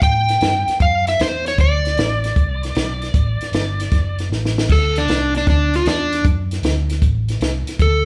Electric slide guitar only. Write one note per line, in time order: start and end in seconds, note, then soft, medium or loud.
0.03 0.82 G5 loud
0.82 1.08 F5 medium
1.08 1.20 E5 loud
1.21 1.47 C5 medium
1.48 1.58 C#5 medium
1.61 4.28 D5 medium
4.72 4.96 A4 medium
4.98 5.34 D4 medium
5.37 5.48 D4 medium
5.50 5.74 D4 medium
5.76 5.87 F4 medium
5.87 6.24 D4 medium
7.82 8.05 A4 medium